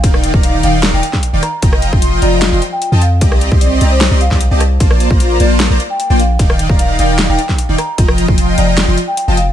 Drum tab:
RD |x---------------|x---------------|x---------------|x---------------|
HH |x-x-x-x-x-x-x-x-|x-x-x-x-x-x-x-x-|x-x-x-x-x-x-x-x-|x-x-x-x-x-x-x-x-|
SD |-r------o--o--r-|-r------o-------|-r------o--o--r-|-r------o-------|
BD |o--o-------o----|o--o------------|o--o-------o----|o--o------------|

RD |x---------------|x---------------|
HH |x-x-x-x-x-x-x-x-|x-x-x-x-x-x-x-x-|
SD |-r------o--o--r-|-r------o-------|
BD |o--o-------o----|o--o------------|